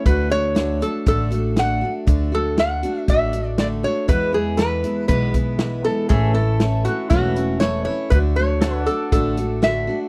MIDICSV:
0, 0, Header, 1, 6, 480
1, 0, Start_track
1, 0, Tempo, 503778
1, 57, Time_signature, 4, 2, 24, 8
1, 9609, End_track
2, 0, Start_track
2, 0, Title_t, "Pedal steel guitar"
2, 0, Program_c, 0, 26
2, 5820, Note_on_c, 0, 69, 70
2, 5825, Note_on_c, 0, 73, 67
2, 5835, Note_on_c, 0, 76, 67
2, 7717, Note_off_c, 0, 69, 0
2, 7720, Note_off_c, 0, 73, 0
2, 7725, Note_off_c, 0, 76, 0
2, 8212, Note_on_c, 0, 69, 62
2, 8221, Note_on_c, 0, 73, 71
2, 8232, Note_on_c, 0, 78, 64
2, 8411, Note_off_c, 0, 73, 0
2, 8411, Note_on_c, 0, 74, 71
2, 9609, Note_off_c, 0, 69, 0
2, 9609, Note_off_c, 0, 74, 0
2, 9609, Note_off_c, 0, 78, 0
2, 9609, End_track
3, 0, Start_track
3, 0, Title_t, "Resonator guitar played with a steel bar"
3, 0, Program_c, 1, 25
3, 57, Note_on_c, 1, 71, 86
3, 296, Note_off_c, 1, 71, 0
3, 300, Note_on_c, 1, 73, 102
3, 783, Note_on_c, 1, 69, 74
3, 793, Note_off_c, 1, 73, 0
3, 1003, Note_off_c, 1, 69, 0
3, 1030, Note_on_c, 1, 69, 87
3, 1518, Note_off_c, 1, 69, 0
3, 1518, Note_on_c, 1, 78, 98
3, 1843, Note_off_c, 1, 78, 0
3, 2235, Note_on_c, 1, 69, 90
3, 2473, Note_off_c, 1, 69, 0
3, 2473, Note_on_c, 1, 78, 86
3, 2946, Note_off_c, 1, 78, 0
3, 2950, Note_on_c, 1, 76, 88
3, 3390, Note_off_c, 1, 76, 0
3, 3428, Note_on_c, 1, 74, 92
3, 3491, Note_off_c, 1, 74, 0
3, 3660, Note_on_c, 1, 73, 88
3, 3892, Note_off_c, 1, 73, 0
3, 3896, Note_on_c, 1, 71, 90
3, 4133, Note_off_c, 1, 71, 0
3, 4136, Note_on_c, 1, 68, 78
3, 4357, Note_on_c, 1, 71, 81
3, 4360, Note_off_c, 1, 68, 0
3, 4812, Note_off_c, 1, 71, 0
3, 4841, Note_on_c, 1, 71, 89
3, 5530, Note_off_c, 1, 71, 0
3, 5569, Note_on_c, 1, 69, 82
3, 5798, Note_off_c, 1, 69, 0
3, 5802, Note_on_c, 1, 68, 86
3, 6032, Note_off_c, 1, 68, 0
3, 6045, Note_on_c, 1, 69, 82
3, 6524, Note_on_c, 1, 66, 73
3, 6545, Note_off_c, 1, 69, 0
3, 6751, Note_off_c, 1, 66, 0
3, 6762, Note_on_c, 1, 66, 77
3, 7214, Note_off_c, 1, 66, 0
3, 7240, Note_on_c, 1, 73, 94
3, 7466, Note_off_c, 1, 73, 0
3, 7477, Note_on_c, 1, 73, 79
3, 7708, Note_off_c, 1, 73, 0
3, 7720, Note_on_c, 1, 71, 88
3, 7787, Note_off_c, 1, 71, 0
3, 7966, Note_on_c, 1, 73, 88
3, 8416, Note_off_c, 1, 73, 0
3, 8446, Note_on_c, 1, 69, 75
3, 8673, Note_off_c, 1, 69, 0
3, 8695, Note_on_c, 1, 69, 85
3, 9181, Note_on_c, 1, 76, 78
3, 9189, Note_off_c, 1, 69, 0
3, 9512, Note_off_c, 1, 76, 0
3, 9609, End_track
4, 0, Start_track
4, 0, Title_t, "Steel-string acoustic guitar"
4, 0, Program_c, 2, 25
4, 52, Note_on_c, 2, 50, 69
4, 56, Note_on_c, 2, 57, 77
4, 65, Note_on_c, 2, 62, 83
4, 73, Note_on_c, 2, 66, 82
4, 274, Note_off_c, 2, 66, 0
4, 285, Note_on_c, 2, 66, 47
4, 290, Note_off_c, 2, 62, 0
4, 295, Note_off_c, 2, 50, 0
4, 297, Note_off_c, 2, 57, 0
4, 301, Note_on_c, 2, 62, 46
4, 320, Note_on_c, 2, 57, 41
4, 522, Note_off_c, 2, 57, 0
4, 523, Note_on_c, 2, 50, 61
4, 531, Note_off_c, 2, 66, 0
4, 533, Note_on_c, 2, 57, 57
4, 534, Note_off_c, 2, 62, 0
4, 545, Note_on_c, 2, 62, 58
4, 552, Note_on_c, 2, 66, 62
4, 756, Note_off_c, 2, 66, 0
4, 768, Note_on_c, 2, 66, 46
4, 770, Note_off_c, 2, 50, 0
4, 775, Note_off_c, 2, 57, 0
4, 776, Note_off_c, 2, 62, 0
4, 788, Note_on_c, 2, 62, 45
4, 803, Note_on_c, 2, 57, 43
4, 1010, Note_off_c, 2, 57, 0
4, 1012, Note_off_c, 2, 66, 0
4, 1013, Note_off_c, 2, 62, 0
4, 1013, Note_on_c, 2, 50, 86
4, 1021, Note_on_c, 2, 57, 85
4, 1024, Note_on_c, 2, 62, 74
4, 1033, Note_on_c, 2, 66, 89
4, 1232, Note_off_c, 2, 66, 0
4, 1244, Note_on_c, 2, 66, 57
4, 1248, Note_off_c, 2, 62, 0
4, 1255, Note_off_c, 2, 50, 0
4, 1259, Note_off_c, 2, 57, 0
4, 1259, Note_on_c, 2, 62, 46
4, 1277, Note_on_c, 2, 57, 43
4, 1489, Note_on_c, 2, 50, 58
4, 1490, Note_off_c, 2, 66, 0
4, 1491, Note_off_c, 2, 57, 0
4, 1498, Note_off_c, 2, 62, 0
4, 1503, Note_on_c, 2, 57, 66
4, 1511, Note_on_c, 2, 62, 63
4, 1524, Note_on_c, 2, 66, 73
4, 1715, Note_off_c, 2, 66, 0
4, 1727, Note_on_c, 2, 66, 58
4, 1733, Note_off_c, 2, 50, 0
4, 1735, Note_off_c, 2, 62, 0
4, 1740, Note_off_c, 2, 57, 0
4, 1746, Note_on_c, 2, 62, 44
4, 1763, Note_on_c, 2, 57, 44
4, 1969, Note_on_c, 2, 50, 77
4, 1971, Note_off_c, 2, 57, 0
4, 1972, Note_off_c, 2, 66, 0
4, 1973, Note_off_c, 2, 62, 0
4, 1982, Note_on_c, 2, 57, 82
4, 1985, Note_on_c, 2, 62, 85
4, 1992, Note_on_c, 2, 66, 85
4, 2198, Note_off_c, 2, 66, 0
4, 2209, Note_on_c, 2, 66, 53
4, 2213, Note_off_c, 2, 50, 0
4, 2215, Note_off_c, 2, 62, 0
4, 2220, Note_off_c, 2, 57, 0
4, 2227, Note_on_c, 2, 62, 46
4, 2242, Note_on_c, 2, 57, 44
4, 2451, Note_on_c, 2, 50, 54
4, 2453, Note_off_c, 2, 57, 0
4, 2453, Note_off_c, 2, 66, 0
4, 2462, Note_off_c, 2, 62, 0
4, 2464, Note_on_c, 2, 57, 60
4, 2473, Note_on_c, 2, 62, 61
4, 2481, Note_on_c, 2, 66, 66
4, 2683, Note_off_c, 2, 66, 0
4, 2694, Note_off_c, 2, 50, 0
4, 2695, Note_on_c, 2, 66, 57
4, 2701, Note_off_c, 2, 57, 0
4, 2702, Note_off_c, 2, 62, 0
4, 2713, Note_on_c, 2, 62, 50
4, 2727, Note_on_c, 2, 57, 44
4, 2936, Note_off_c, 2, 66, 0
4, 2939, Note_off_c, 2, 57, 0
4, 2943, Note_on_c, 2, 50, 69
4, 2945, Note_off_c, 2, 62, 0
4, 2950, Note_on_c, 2, 57, 85
4, 2957, Note_on_c, 2, 62, 93
4, 2965, Note_on_c, 2, 66, 76
4, 3167, Note_off_c, 2, 66, 0
4, 3179, Note_on_c, 2, 66, 52
4, 3180, Note_off_c, 2, 50, 0
4, 3183, Note_off_c, 2, 62, 0
4, 3184, Note_off_c, 2, 57, 0
4, 3195, Note_on_c, 2, 62, 44
4, 3207, Note_on_c, 2, 57, 44
4, 3414, Note_off_c, 2, 57, 0
4, 3415, Note_on_c, 2, 50, 61
4, 3418, Note_off_c, 2, 66, 0
4, 3426, Note_off_c, 2, 62, 0
4, 3426, Note_on_c, 2, 57, 67
4, 3437, Note_on_c, 2, 62, 66
4, 3444, Note_on_c, 2, 66, 67
4, 3640, Note_off_c, 2, 66, 0
4, 3651, Note_on_c, 2, 66, 51
4, 3656, Note_off_c, 2, 50, 0
4, 3659, Note_off_c, 2, 62, 0
4, 3661, Note_off_c, 2, 57, 0
4, 3671, Note_on_c, 2, 62, 52
4, 3684, Note_on_c, 2, 57, 37
4, 3887, Note_on_c, 2, 40, 80
4, 3892, Note_on_c, 2, 47, 65
4, 3894, Note_off_c, 2, 66, 0
4, 3900, Note_on_c, 2, 52, 86
4, 3901, Note_off_c, 2, 57, 0
4, 3903, Note_off_c, 2, 62, 0
4, 3904, Note_on_c, 2, 56, 80
4, 3907, Note_on_c, 2, 59, 77
4, 3911, Note_on_c, 2, 64, 77
4, 4111, Note_off_c, 2, 64, 0
4, 4122, Note_on_c, 2, 64, 59
4, 4125, Note_off_c, 2, 59, 0
4, 4132, Note_off_c, 2, 40, 0
4, 4132, Note_off_c, 2, 56, 0
4, 4134, Note_off_c, 2, 47, 0
4, 4136, Note_on_c, 2, 59, 51
4, 4139, Note_off_c, 2, 52, 0
4, 4143, Note_on_c, 2, 56, 49
4, 4155, Note_on_c, 2, 52, 41
4, 4360, Note_off_c, 2, 52, 0
4, 4369, Note_off_c, 2, 64, 0
4, 4371, Note_on_c, 2, 52, 62
4, 4372, Note_off_c, 2, 56, 0
4, 4376, Note_off_c, 2, 59, 0
4, 4383, Note_on_c, 2, 56, 62
4, 4390, Note_on_c, 2, 59, 60
4, 4398, Note_on_c, 2, 64, 57
4, 4597, Note_off_c, 2, 64, 0
4, 4609, Note_off_c, 2, 59, 0
4, 4609, Note_on_c, 2, 64, 54
4, 4614, Note_off_c, 2, 52, 0
4, 4620, Note_off_c, 2, 56, 0
4, 4621, Note_on_c, 2, 59, 53
4, 4630, Note_on_c, 2, 56, 39
4, 4640, Note_on_c, 2, 52, 38
4, 4843, Note_off_c, 2, 52, 0
4, 4845, Note_on_c, 2, 40, 80
4, 4847, Note_off_c, 2, 56, 0
4, 4850, Note_on_c, 2, 47, 82
4, 4851, Note_off_c, 2, 59, 0
4, 4852, Note_off_c, 2, 64, 0
4, 4854, Note_on_c, 2, 52, 78
4, 4858, Note_on_c, 2, 56, 79
4, 4862, Note_on_c, 2, 59, 85
4, 4864, Note_on_c, 2, 64, 82
4, 5077, Note_off_c, 2, 64, 0
4, 5089, Note_on_c, 2, 64, 49
4, 5090, Note_off_c, 2, 40, 0
4, 5090, Note_off_c, 2, 59, 0
4, 5093, Note_off_c, 2, 47, 0
4, 5095, Note_off_c, 2, 52, 0
4, 5097, Note_off_c, 2, 56, 0
4, 5102, Note_on_c, 2, 59, 54
4, 5114, Note_on_c, 2, 56, 49
4, 5122, Note_on_c, 2, 52, 42
4, 5315, Note_off_c, 2, 52, 0
4, 5326, Note_on_c, 2, 52, 60
4, 5327, Note_off_c, 2, 56, 0
4, 5332, Note_off_c, 2, 64, 0
4, 5336, Note_off_c, 2, 59, 0
4, 5339, Note_on_c, 2, 56, 62
4, 5348, Note_on_c, 2, 59, 65
4, 5359, Note_on_c, 2, 64, 69
4, 5555, Note_off_c, 2, 64, 0
4, 5565, Note_off_c, 2, 59, 0
4, 5566, Note_on_c, 2, 64, 49
4, 5571, Note_off_c, 2, 52, 0
4, 5577, Note_off_c, 2, 56, 0
4, 5577, Note_on_c, 2, 59, 48
4, 5588, Note_on_c, 2, 56, 45
4, 5598, Note_on_c, 2, 52, 38
4, 5801, Note_off_c, 2, 52, 0
4, 5805, Note_on_c, 2, 45, 78
4, 5811, Note_off_c, 2, 64, 0
4, 5813, Note_on_c, 2, 52, 86
4, 5814, Note_off_c, 2, 56, 0
4, 5816, Note_off_c, 2, 59, 0
4, 5818, Note_on_c, 2, 57, 77
4, 5820, Note_on_c, 2, 61, 83
4, 5823, Note_on_c, 2, 64, 76
4, 6028, Note_off_c, 2, 64, 0
4, 6039, Note_on_c, 2, 64, 55
4, 6046, Note_off_c, 2, 61, 0
4, 6050, Note_off_c, 2, 45, 0
4, 6054, Note_off_c, 2, 52, 0
4, 6056, Note_off_c, 2, 57, 0
4, 6057, Note_on_c, 2, 61, 44
4, 6070, Note_on_c, 2, 57, 43
4, 6284, Note_off_c, 2, 57, 0
4, 6287, Note_off_c, 2, 64, 0
4, 6287, Note_on_c, 2, 52, 55
4, 6294, Note_off_c, 2, 61, 0
4, 6296, Note_on_c, 2, 57, 65
4, 6306, Note_on_c, 2, 61, 62
4, 6313, Note_on_c, 2, 64, 67
4, 6517, Note_off_c, 2, 64, 0
4, 6528, Note_on_c, 2, 64, 49
4, 6531, Note_off_c, 2, 52, 0
4, 6535, Note_off_c, 2, 57, 0
4, 6536, Note_off_c, 2, 61, 0
4, 6548, Note_on_c, 2, 61, 49
4, 6561, Note_on_c, 2, 57, 43
4, 6772, Note_off_c, 2, 64, 0
4, 6774, Note_off_c, 2, 57, 0
4, 6774, Note_on_c, 2, 45, 78
4, 6781, Note_off_c, 2, 61, 0
4, 6782, Note_on_c, 2, 52, 77
4, 6786, Note_on_c, 2, 57, 80
4, 6791, Note_on_c, 2, 61, 85
4, 6795, Note_on_c, 2, 64, 88
4, 6997, Note_off_c, 2, 64, 0
4, 7009, Note_on_c, 2, 64, 57
4, 7014, Note_off_c, 2, 45, 0
4, 7019, Note_off_c, 2, 52, 0
4, 7019, Note_off_c, 2, 61, 0
4, 7020, Note_off_c, 2, 57, 0
4, 7030, Note_on_c, 2, 61, 55
4, 7044, Note_on_c, 2, 57, 45
4, 7252, Note_off_c, 2, 64, 0
4, 7253, Note_on_c, 2, 52, 60
4, 7255, Note_off_c, 2, 57, 0
4, 7262, Note_off_c, 2, 61, 0
4, 7266, Note_on_c, 2, 57, 69
4, 7277, Note_on_c, 2, 61, 67
4, 7287, Note_on_c, 2, 64, 65
4, 7484, Note_off_c, 2, 64, 0
4, 7494, Note_off_c, 2, 52, 0
4, 7495, Note_on_c, 2, 64, 59
4, 7499, Note_off_c, 2, 61, 0
4, 7500, Note_off_c, 2, 57, 0
4, 7511, Note_on_c, 2, 61, 49
4, 7526, Note_on_c, 2, 57, 40
4, 7729, Note_off_c, 2, 57, 0
4, 7735, Note_off_c, 2, 64, 0
4, 7737, Note_on_c, 2, 50, 85
4, 7740, Note_on_c, 2, 57, 71
4, 7743, Note_off_c, 2, 61, 0
4, 7750, Note_on_c, 2, 62, 80
4, 7755, Note_on_c, 2, 66, 85
4, 7965, Note_off_c, 2, 66, 0
4, 7976, Note_off_c, 2, 50, 0
4, 7976, Note_on_c, 2, 66, 56
4, 7977, Note_off_c, 2, 57, 0
4, 7982, Note_off_c, 2, 62, 0
4, 7995, Note_on_c, 2, 62, 49
4, 8006, Note_on_c, 2, 57, 45
4, 8215, Note_off_c, 2, 66, 0
4, 8221, Note_off_c, 2, 57, 0
4, 8224, Note_on_c, 2, 50, 62
4, 8225, Note_off_c, 2, 62, 0
4, 8233, Note_on_c, 2, 57, 56
4, 8244, Note_on_c, 2, 62, 65
4, 8252, Note_on_c, 2, 66, 66
4, 8445, Note_off_c, 2, 66, 0
4, 8457, Note_on_c, 2, 66, 54
4, 8459, Note_off_c, 2, 50, 0
4, 8459, Note_off_c, 2, 62, 0
4, 8463, Note_off_c, 2, 57, 0
4, 8471, Note_on_c, 2, 62, 47
4, 8487, Note_on_c, 2, 57, 45
4, 8693, Note_off_c, 2, 57, 0
4, 8695, Note_off_c, 2, 66, 0
4, 8697, Note_on_c, 2, 50, 85
4, 8702, Note_off_c, 2, 62, 0
4, 8704, Note_on_c, 2, 57, 79
4, 8712, Note_on_c, 2, 62, 91
4, 8719, Note_on_c, 2, 66, 78
4, 8923, Note_off_c, 2, 66, 0
4, 8934, Note_on_c, 2, 66, 52
4, 8935, Note_off_c, 2, 50, 0
4, 8939, Note_off_c, 2, 57, 0
4, 8941, Note_off_c, 2, 62, 0
4, 8952, Note_on_c, 2, 62, 42
4, 8966, Note_on_c, 2, 57, 46
4, 9165, Note_off_c, 2, 57, 0
4, 9166, Note_on_c, 2, 50, 62
4, 9174, Note_off_c, 2, 66, 0
4, 9175, Note_off_c, 2, 62, 0
4, 9176, Note_on_c, 2, 57, 63
4, 9186, Note_on_c, 2, 62, 68
4, 9197, Note_on_c, 2, 66, 71
4, 9395, Note_off_c, 2, 66, 0
4, 9407, Note_on_c, 2, 66, 53
4, 9409, Note_off_c, 2, 50, 0
4, 9413, Note_off_c, 2, 62, 0
4, 9415, Note_off_c, 2, 57, 0
4, 9424, Note_on_c, 2, 62, 49
4, 9437, Note_on_c, 2, 57, 40
4, 9609, Note_off_c, 2, 57, 0
4, 9609, Note_off_c, 2, 62, 0
4, 9609, Note_off_c, 2, 66, 0
4, 9609, End_track
5, 0, Start_track
5, 0, Title_t, "Upright bass"
5, 0, Program_c, 3, 32
5, 54, Note_on_c, 3, 38, 98
5, 766, Note_off_c, 3, 38, 0
5, 1016, Note_on_c, 3, 33, 85
5, 1728, Note_off_c, 3, 33, 0
5, 1975, Note_on_c, 3, 38, 101
5, 2686, Note_off_c, 3, 38, 0
5, 2937, Note_on_c, 3, 33, 81
5, 3648, Note_off_c, 3, 33, 0
5, 3891, Note_on_c, 3, 40, 102
5, 4604, Note_off_c, 3, 40, 0
5, 4851, Note_on_c, 3, 35, 78
5, 5564, Note_off_c, 3, 35, 0
5, 5814, Note_on_c, 3, 33, 100
5, 6525, Note_off_c, 3, 33, 0
5, 6773, Note_on_c, 3, 28, 77
5, 7484, Note_off_c, 3, 28, 0
5, 7732, Note_on_c, 3, 38, 104
5, 8443, Note_off_c, 3, 38, 0
5, 8689, Note_on_c, 3, 33, 89
5, 9401, Note_off_c, 3, 33, 0
5, 9609, End_track
6, 0, Start_track
6, 0, Title_t, "Drums"
6, 54, Note_on_c, 9, 42, 70
6, 55, Note_on_c, 9, 36, 107
6, 150, Note_off_c, 9, 36, 0
6, 150, Note_off_c, 9, 42, 0
6, 533, Note_on_c, 9, 38, 99
6, 533, Note_on_c, 9, 42, 59
6, 628, Note_off_c, 9, 38, 0
6, 628, Note_off_c, 9, 42, 0
6, 780, Note_on_c, 9, 42, 61
6, 875, Note_off_c, 9, 42, 0
6, 1016, Note_on_c, 9, 36, 116
6, 1017, Note_on_c, 9, 42, 67
6, 1112, Note_off_c, 9, 36, 0
6, 1113, Note_off_c, 9, 42, 0
6, 1253, Note_on_c, 9, 42, 58
6, 1349, Note_off_c, 9, 42, 0
6, 1491, Note_on_c, 9, 38, 103
6, 1491, Note_on_c, 9, 42, 54
6, 1587, Note_off_c, 9, 38, 0
6, 1587, Note_off_c, 9, 42, 0
6, 1975, Note_on_c, 9, 42, 60
6, 1976, Note_on_c, 9, 36, 111
6, 2070, Note_off_c, 9, 42, 0
6, 2071, Note_off_c, 9, 36, 0
6, 2455, Note_on_c, 9, 38, 99
6, 2455, Note_on_c, 9, 42, 54
6, 2550, Note_off_c, 9, 38, 0
6, 2550, Note_off_c, 9, 42, 0
6, 2697, Note_on_c, 9, 42, 54
6, 2792, Note_off_c, 9, 42, 0
6, 2936, Note_on_c, 9, 42, 66
6, 2937, Note_on_c, 9, 36, 106
6, 3031, Note_off_c, 9, 42, 0
6, 3032, Note_off_c, 9, 36, 0
6, 3171, Note_on_c, 9, 42, 58
6, 3267, Note_off_c, 9, 42, 0
6, 3412, Note_on_c, 9, 38, 104
6, 3412, Note_on_c, 9, 42, 64
6, 3507, Note_off_c, 9, 38, 0
6, 3507, Note_off_c, 9, 42, 0
6, 3894, Note_on_c, 9, 36, 109
6, 3894, Note_on_c, 9, 42, 62
6, 3989, Note_off_c, 9, 36, 0
6, 3989, Note_off_c, 9, 42, 0
6, 4369, Note_on_c, 9, 38, 102
6, 4369, Note_on_c, 9, 42, 60
6, 4464, Note_off_c, 9, 38, 0
6, 4464, Note_off_c, 9, 42, 0
6, 4608, Note_on_c, 9, 42, 56
6, 4704, Note_off_c, 9, 42, 0
6, 4844, Note_on_c, 9, 42, 65
6, 4851, Note_on_c, 9, 36, 119
6, 4940, Note_off_c, 9, 42, 0
6, 4947, Note_off_c, 9, 36, 0
6, 5087, Note_on_c, 9, 42, 60
6, 5090, Note_on_c, 9, 36, 78
6, 5182, Note_off_c, 9, 42, 0
6, 5186, Note_off_c, 9, 36, 0
6, 5324, Note_on_c, 9, 38, 105
6, 5324, Note_on_c, 9, 42, 58
6, 5419, Note_off_c, 9, 38, 0
6, 5419, Note_off_c, 9, 42, 0
6, 5810, Note_on_c, 9, 42, 59
6, 5813, Note_on_c, 9, 36, 112
6, 5905, Note_off_c, 9, 42, 0
6, 5909, Note_off_c, 9, 36, 0
6, 6287, Note_on_c, 9, 38, 108
6, 6287, Note_on_c, 9, 42, 52
6, 6383, Note_off_c, 9, 38, 0
6, 6383, Note_off_c, 9, 42, 0
6, 6532, Note_on_c, 9, 42, 53
6, 6627, Note_off_c, 9, 42, 0
6, 6766, Note_on_c, 9, 42, 62
6, 6772, Note_on_c, 9, 36, 123
6, 6861, Note_off_c, 9, 42, 0
6, 6867, Note_off_c, 9, 36, 0
6, 7015, Note_on_c, 9, 42, 60
6, 7110, Note_off_c, 9, 42, 0
6, 7249, Note_on_c, 9, 38, 96
6, 7249, Note_on_c, 9, 42, 60
6, 7344, Note_off_c, 9, 38, 0
6, 7344, Note_off_c, 9, 42, 0
6, 7733, Note_on_c, 9, 42, 65
6, 7734, Note_on_c, 9, 36, 104
6, 7828, Note_off_c, 9, 42, 0
6, 7829, Note_off_c, 9, 36, 0
6, 8207, Note_on_c, 9, 38, 111
6, 8207, Note_on_c, 9, 42, 68
6, 8302, Note_off_c, 9, 38, 0
6, 8302, Note_off_c, 9, 42, 0
6, 8452, Note_on_c, 9, 42, 53
6, 8547, Note_off_c, 9, 42, 0
6, 8692, Note_on_c, 9, 36, 120
6, 8692, Note_on_c, 9, 42, 69
6, 8787, Note_off_c, 9, 36, 0
6, 8788, Note_off_c, 9, 42, 0
6, 8931, Note_on_c, 9, 42, 55
6, 9026, Note_off_c, 9, 42, 0
6, 9172, Note_on_c, 9, 38, 113
6, 9172, Note_on_c, 9, 42, 57
6, 9267, Note_off_c, 9, 38, 0
6, 9267, Note_off_c, 9, 42, 0
6, 9609, End_track
0, 0, End_of_file